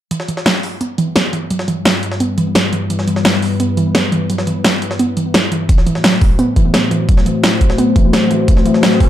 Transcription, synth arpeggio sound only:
0.11 0.15 E3 medium
0.28 0.32 E3 medium
0.46 0.53 E4 medium
0.81 0.87 B3 loud
0.98 1.02 E3 loud
1.16 1.22 B3 medium
1.33 1.43 E3 medium
1.50 1.55 F#3 medium
1.68 1.72 E3 medium
1.85 1.92 E4 medium
2.20 2.27 B3 loud
2.38 2.42 E3 loud
2.55 2.65 F#3 medium
2.73 2.77 E3 medium
2.90 2.94 E3 medium
3.07 3.12 E3 medium
3.25 3.32 E4 medium
3.60 3.67 B3 loud
3.77 3.81 E3 loud
3.95 4.01 B3 medium
4.12 4.22 E3 medium
4.30 4.34 F#3 medium
4.47 4.51 E3 medium
4.64 4.71 E4 medium
4.99 5.06 B3 loud
5.17 5.24 E3 medium
5.34 5.44 E4 medium
5.52 5.56 E3 medium
5.69 5.73 E3 medium
5.87 5.91 E3 medium
6.04 6.08 F#3 medium
6.39 6.46 B3 loud
6.56 6.60 E3 loud
6.74 6.80 B3 medium
6.91 7.01 E3 medium
7.09 7.13 F#3 medium
7.26 7.30 E3 medium
7.43 7.50 E4 medium
7.78 7.85 B3 loud
7.96 8.00 E3 loud
8.13 8.23 F#3 medium
8.31 8.35 E3 medium
8.48 8.52 E3 medium
8.66 8.70 E3 medium
8.83 8.87 F#3 medium

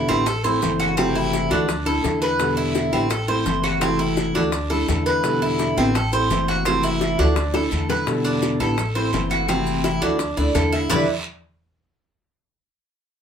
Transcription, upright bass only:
0.09 0.59 A1 medium
0.62 1.45 F#1 loud
1.50 2.00 D2 medium
2.04 2.87 E2 loud
2.92 3.42 A1 medium
3.46 4.29 F#1 medium
4.35 4.85 D2 medium
4.88 5.71 E2 medium
5.77 6.27 A1 medium
6.30 7.13 F#1 medium
7.19 7.68 D2 medium
7.72 8.55 E2 medium
8.60 9.10 A1 medium
9.13 9.96 F#1 medium
10.02 10.35 D2 medium
10.37 10.53 D2 medium
10.55 10.86 E2 medium
10.90 11.07 E2 loud

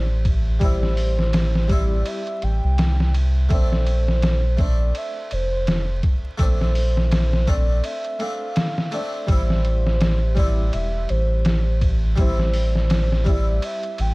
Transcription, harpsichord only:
0.00 0.57 G3 medium
0.00 0.58 C4 medium
0.00 0.59 E4 medium
0.59 1.65 G3 medium
0.59 1.66 C4 medium
0.59 1.67 E4 medium
1.68 3.46 G3 medium
1.68 3.47 C4 medium
1.68 3.48 E4 medium
3.49 4.54 A3 medium
3.49 4.55 C4 medium
3.49 4.56 D4 medium
4.57 6.35 A3 medium
4.57 6.36 C4 medium
4.57 6.37 D4 medium
6.38 7.43 A3 medium
6.38 7.44 C4 medium
6.38 7.45 D4 medium
7.47 8.17 A3 medium
7.47 8.17 C4 medium
7.47 8.18 D4 medium
8.19 8.88 A3 medium
8.19 8.89 C4 medium
8.19 8.89 D4 medium
8.92 9.25 A3 medium
8.92 9.25 C4 medium
8.92 9.25 D4 loud
9.27 10.32 G3 medium
9.27 10.33 C4 medium
9.27 10.34 E4 medium
10.35 12.13 G3 medium
10.35 12.14 C4 medium
10.35 12.15 E4 medium
12.16 13.22 G3 medium
12.16 13.22 C4 medium
12.16 13.23 E4 medium
13.24 14.14 G3 medium
13.24 14.14 C4 medium
13.24 14.14 E4 medium

